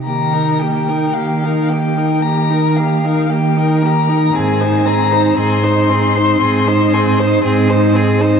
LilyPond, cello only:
\new Staff \with { instrumentName = "Cello" } { \clef bass \time 4/4 \key ees \major \tempo 4 = 58 ees4 ees4 ees4 ees4 | aes,4 aes,4 aes,4 aes,4 | }